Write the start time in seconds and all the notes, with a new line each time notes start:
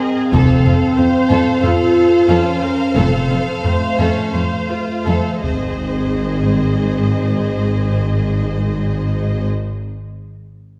Already playing: C4 C5 D#5
0.03 G#4
0.33 F1 F2 C4 A4 C5 F5, taiko
0.65 F2 F4 A4
0.98 F2 C4 C5
1.30 F2 A4
1.62 F2 F4 A4
2.28 F2 C#4 F4 A4
2.62 A#4
2.95 F1 F2 C4 A4
3.29 F2 F4
3.63 F2 A3 C4 C5
3.98 F2 C#4 A4
4.33 F2 A3 F4 C5
4.70 F4
5.07 F2 A4
5.44 G#1 G#2 C4 G#4 C5 D#5, taiko